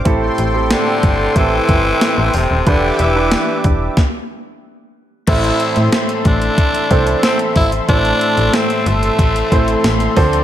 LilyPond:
<<
  \new Staff \with { instrumentName = "Analog synth pad" } { \time 4/4 \key a \minor \tempo 4 = 92 << { c'''1 | d'''2 r2 | c'''1~ | c'''1 | } \\ { <a' g''>1 | <g' e''>2 r2 | <a' e''>1~ | <a' e''>2.~ <a' e''>8 <f d''>8 | } >> }
  \new Staff \with { instrumentName = "Grand piano" } { \time 4/4 \key a \minor <c' e' g' a'>8. <c' e' g' a'>4~ <c' e' g' a'>16 <c' e' g' a'>2 | <d' e' g' b'>8. <d' e' g' b'>4~ <d' e' g' b'>16 r2 | <a c' e' a' c''>2 r8 <a c' e' a' c''>4. | <a c' e' a' c''>2 r8 <a c' e' a' c''>4 <f c' d' a' c''>8 | }
  \new Staff \with { instrumentName = "Grand piano" } { \clef bass \time 4/4 \key a \minor a,4. r2 r8 | e4. r2 r8 | a,4. r2 r8 | a,4. r2 d8 | }
  \new Staff \with { instrumentName = "Tenor saxophone" } { \time 4/4 \key a \minor r4 d4 e4. c8 | d8 e4 r2 r8 | e'4 r8 d'4. c'8 e'8 | d'4 c'8 a2 r8 | }
  \new Staff \with { instrumentName = "Overdriven electric guitar" } { \clef bass \time 4/4 \key a \minor r1 | r1 | <a, e a>4 <a, e a>4 <a, e a>4 <e a>4 | <a, e a>2 <a, e a>4 <a, e a>8 <d a d'>8 | }
  \new Staff \with { instrumentName = "FM bass" } { \clef bass \time 4/4 \key a \minor a,,8 a,,8. r16 g,,8 a,,8 g,,8 r16 a,,16 e,,16 dis,,16 | e,,8 e,,8. r16 e,,8 r2 | a,,8 r16 a,16 r8 a,,8 r8 c,8 r8 gis,,8 | a,,8 r16 a,,16 r8 g,,8 a,,8 a,,8 a,,8 d,8 | }
  \new DrumStaff \with { instrumentName = "Drums" } \drummode { \time 4/4 <hh bd>8 hh8 <hh sn tamb>8 <hh bd>8 <hh bd>8 <hh bd>8 <hh sn tamb>8 hho8 | <hh bd>8 hh8 <hh sn tamb>8 <hh bd>8 <bd sn>4 r4 | <cymc hh bd>16 hh16 hh16 hh16 <hh sn tamb>16 hh16 <hh bd>16 hh16 <hh bd>16 hh16 <hh bd>16 hh16 <hh sn tamb>16 hh16 <hho bd>16 hh16 | <hh bd>16 hh16 hh16 hh16 <hh sn tamb>16 hh16 hh16 hh16 <hh bd>16 hh16 <hh bd>16 hh16 <hh sn tamb>16 hh16 <hho bd>16 hh16 | }
>>